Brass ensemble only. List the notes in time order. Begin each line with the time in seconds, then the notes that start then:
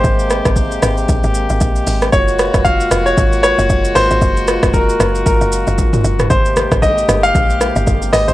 Already playing: C3 G#3 A#3 G4
2.13 G#3 A#3 F4 F#4
6.30 C3 A#3 G4